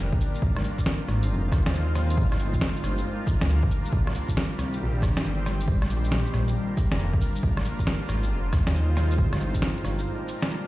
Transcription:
Already playing: F1 G3 A#3 D4 F4 A#4
0.13 kick
0.21 cabasa
0.35 shaker
0.42 G#1 G#3 C4 D#4 F4 C5, kick
0.56 cross-stick
0.64 cabasa
0.78 kick, shaker
0.86 snare
1.08 G#1, cross-stick, cabasa
1.23 shaker
1.30 F1
1.52 D#2, kick, cross-stick, cabasa
1.66 snare, shaker
1.74 shaker
1.95 cross-stick, cabasa
2.10 shaker
2.17 G1 G3 A#3 D4 A#4, kick
2.32 cross-stick, shaker
2.39 cabasa
2.54 kick, shaker
2.61 snare
2.76 shaker
2.83 G1, cross-stick, cabasa
2.98 shaker
3.27 kick, cabasa
3.41 D2, snare, shaker
3.49 shaker
3.63 kick
3.71 cabasa
3.85 shaker
3.91 C2 D#3 C4 G4 C5, kick
4.07 cross-stick
4.15 cabasa
4.29 kick, shaker
4.37 snare
4.58 C2, cross-stick, cabasa
4.73 shaker
4.80 A#1
5.02 G1, kick, cross-stick, cabasa
5.17 snare, shaker
5.25 shaker
5.46 cross-stick, cabasa
5.61 shaker
5.68 A#1 A#3 D4 F4 A#4, kick
5.82 cross-stick, shaker
5.90 cabasa
6.04 shaker
6.12 snare
6.26 shaker
6.33 A#1, cross-stick, cabasa
6.48 shaker
6.77 kick, cabasa
6.92 F1, snare, shaker
6.99 shaker
7.14 kick
7.21 cabasa
7.36 shaker
7.42 G#1 G#3 C4 D#4 F4 C5, kick
7.57 cross-stick
7.65 cabasa
7.79 kick, shaker
7.87 snare
8.09 G#1, cross-stick, cabasa
8.23 shaker
8.30 F1
8.53 D#2, kick, cross-stick, cabasa
8.67 snare, shaker
8.75 shaker
8.97 cross-stick, cabasa
9.11 shaker
9.17 G1 G3 A#3 D4 F4 A#4, kick
9.33 cross-stick, shaker
9.40 cabasa
9.55 kick, shaker
9.62 snare
9.77 shaker
9.84 G1, cross-stick, cabasa
9.99 shaker
10.28 cabasa
10.42 snare, shaker
10.50 shaker

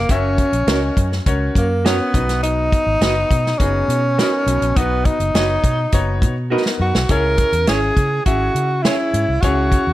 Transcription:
Already playing: A#3
0.09 F#1 C#4 F#4 A#4 E5, kick, closed hi-hat
0.38 kick, closed hi-hat
0.53 A#1, closed hi-hat
0.67 C#2 C#4 F#4 A#4 C#5 D#5, snare, closed hi-hat
0.97 F#2, kick, closed hi-hat
1.12 snare
1.26 C#2 C#4 F#4 A#4 C#5, kick, closed hi-hat
1.55 F#2 A#3, kick, closed hi-hat
1.85 B3 C#4 F#4 A#4 C#5, snare, closed hi-hat
2.14 B1 B2 B3 D#4 F#4 B4, kick, closed hi-hat
2.29 snare, closed hi-hat
2.43 D#4, closed hi-hat
2.72 kick, closed hi-hat
2.86 G#1
3.01 F#1 B3 D#4 F#4 B4 D#5, snare, closed hi-hat
3.30 B2, kick, closed hi-hat
3.46 snare
3.58 F#1 B3 C#4 D#4 F#4 G#4, kick, closed hi-hat
3.88 B2, closed hi-hat
4.18 B3 D#4 F#4 A#4 B4 D#5, snare, closed hi-hat
4.46 B1 B2, closed hi-hat
4.62 A#1, closed hi-hat
4.76 B1 B3 D#4 F#4 B4, kick, closed hi-hat
5.05 D#4, kick, closed hi-hat
5.20 F#1, closed hi-hat
5.34 F#1 B3 D#4 F#4 B4 C#5 D#5, snare, closed hi-hat
5.63 B2, kick, closed hi-hat
5.92 F#1 B3 D#4 F#4 C#5, kick, closed hi-hat
6.22 B2, kick, closed hi-hat
6.50 B3 D#4 F#4 A#4 B4 D#5
6.66 snare
6.79 F#2 F#4
6.95 B1, snare
7.09 C#2 C#3 C#4 E4 G#4 A#4 C#5, kick, closed hi-hat
7.38 kick, closed hi-hat
7.52 E2, closed hi-hat
7.67 G#1 C#4 E4 G#4 C#5, snare, closed hi-hat
7.97 C#3, kick, closed hi-hat
8.26 G#1 C#4 E4 F#4 G#4 E5, kick, closed hi-hat
8.55 C#3, closed hi-hat
8.83 C#4 E4 G#4 C#5, snare, closed hi-hat
9.14 G#2, closed hi-hat
9.28 C2
9.41 C#2 C#3 C#4 E4 F#4 G#4 C#5, kick, closed hi-hat
9.72 kick, closed hi-hat
9.87 E2

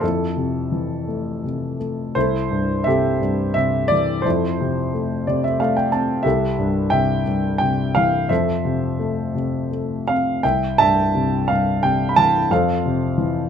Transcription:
0.01 F2 E4 A4
0.37 C3
0.72 E3
1.07 A3
1.44 C3
1.80 A3
2.15 C2 E4 A4 C5
2.50 G2
2.84 C3 G4 A4 E5
3.21 G2
3.54 C3 E5
3.88 E3 D5
4.22 F2 C5
4.26 E4 A4
4.60 C3
4.94 A3
5.27 C3 D5
5.44 E5
5.60 A3 F5
5.77 G5
5.92 C4 A5
6.23 C2 G4 A4 E5
6.59 G2
6.90 C3 E5 G5
7.26 G2
7.58 C3 G5
7.95 E3 F5
8.29 F2 A4 C5 E5
8.65 C3
8.99 A3
9.35 C3
9.71 A3
10.08 C4 F5
10.43 C2 E5 G5
10.78 G2 E5 A5
11.15 C3
11.48 G2 F5
11.83 C3 G5
12.09 B5
12.16 E3 A5
12.51 F2 A4 C5 F5
12.86 C3
13.18 E3

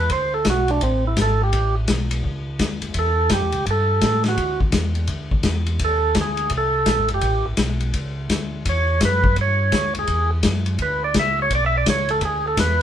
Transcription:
0.00 B4
0.10 D2 C5, kick, ride
0.34 A4
0.45 B1, kick, snare, hi-hat pedal, ride
0.50 F#4
0.68 D4, ride
0.81 A1 C4, kick, ride
1.07 E4
1.17 G#1, kick, snare, hi-hat pedal, ride
1.22 A4
1.43 G4
1.53 A1, kick, ride
1.88 B1, kick, snare, hi-hat pedal, ride
2.11 ride
2.24 C#2, kick
2.59 D2, kick, snare, hi-hat pedal, ride
2.82 D2, ride
2.94 E2, kick, ride
2.99 A4
3.29 F#2 G4, kick, snare, hi-hat pedal, ride
3.42 E2
3.52 C#2, ride
3.66 G2, kick, ride
3.70 A4
4.01 A2, kick, snare, hi-hat pedal, ride
4.24 snare, ride
4.28 F#4
4.37 D2, kick, ride
4.60 kick
4.72 E2, kick, snare, hi-hat pedal, ride
4.95 ride
5.07 D2, kick, ride
5.31 kick
5.43 E2, kick, snare, hi-hat pedal, ride
5.66 ride
5.79 D#2, kick, ride
5.85 A4
6.15 D2, kick, snare, hi-hat pedal, ride
6.21 G#4
6.37 ride
6.50 C2, kick, ride
6.57 A4
6.86 B1, kick, snare, hi-hat pedal, ride
6.99 A1
7.08 F#1, ride
7.14 G4
7.21 A1, kick, ride
7.47 A1
7.57 B1, kick, snare, hi-hat pedal, ride
7.80 ride
7.94 C#2, kick, ride
8.30 D2, kick, snare, hi-hat pedal, ride
8.65 E2 C#5, kick, ride
9.01 F#2, kick, snare, hi-hat pedal, ride
9.05 B4
9.24 kick
9.36 G2, kick, ride
9.41 C#5
9.72 D2, kick, snare, hi-hat pedal, ride
9.95 D2, ride
9.99 G#4
10.07 E2, kick, ride
10.43 F#2, kick, snare, hi-hat pedal, ride
10.66 ride
10.79 D2 B4, kick, ride
11.04 D5
11.14 C#2, kick, snare, hi-hat pedal, ride
11.19 E5
11.42 C#5
11.50 B1, kick, ride
11.55 D5
11.66 E5
11.78 D5
11.86 C#2 C#5, kick, snare, hi-hat pedal, ride
12.09 A4, ride
12.21 D2 G#4, kick, ride
12.48 A4
12.57 E2 B4, kick, snare, hi-hat pedal, ride

